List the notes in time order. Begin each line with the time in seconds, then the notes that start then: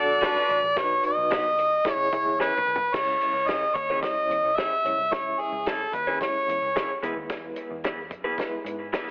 Already playing: B1 D4 F#4 A4 D5
0.22 A3 D4 F#4 A4 B4, snare, closed hi-hat
0.36 snare
0.49 A1, closed hi-hat
0.63 A#1
0.76 B1 D4 F#4 B4 C#5, kick, snare, closed hi-hat
0.83 D#4
1.03 D#5, closed hi-hat
1.17 B1
1.31 B3 D#4 F#4 B4, snare, closed hi-hat
1.57 C#2, closed hi-hat
1.85 C#2 E4 G#4 C#5, kick, snare, closed hi-hat
1.93 C#3 C#5
2.13 C#2 E4 G#4 C#5, kick, closed hi-hat
2.25 D#2
2.38 E2 C#4 E4 G#4 B4 C#5, snare
2.58 mid tom
2.67 C2
2.76 floor tom
2.94 C#2 G#3 C#4 E4 C#5, kick, snare, crash
3.21 closed hi-hat
3.33 C#2
3.48 C#4 E4 G#4 C#5 D#5, snare, closed hi-hat
3.75 D#2 C#5, kick, closed hi-hat
3.90 C#4 E4 G#4 C#5
4.02 G#3 C#4 E4 C#5 D#5, kick, snare, closed hi-hat
4.30 E2, closed hi-hat
4.43 C#2
4.56 C#4 E4 G#4 C#5 E5, snare, closed hi-hat
4.84 B1 G#3 C#4 E4 C#5, closed hi-hat
4.97 C2
5.11 C#2 G#3 C#4 E4 C#5 E5, kick, snare, closed hi-hat
5.39 G#4, closed hi-hat
5.52 C#2
5.66 C#4 E4 G#4 A4 C#5, snare, closed hi-hat
5.93 D#2 B4, kick, closed hi-hat
6.07 C#4 E4 G#4 C#5
6.21 G#3 C#4 E4 C#5, kick, snare, closed hi-hat
6.48 E2, closed hi-hat
6.62 C#2
6.76 C#4 E4 G#4 C#5, snare, closed hi-hat
7.02 E2 G#3 B3 E4 G#4 B4, closed hi-hat
7.16 D#2
7.30 E2, kick, snare, closed hi-hat
7.56 closed hi-hat
7.70 E2
7.84 B3 E4 G#4 B4, snare, closed hi-hat
8.11 F#2, kick, closed hi-hat
8.24 B3 E4 G#4 B4
8.38 G#3 B3 E4 B4, kick, snare, closed hi-hat
8.64 G#2, closed hi-hat
8.93 B3 E4 G#4 B4, snare, closed hi-hat
9.07 snare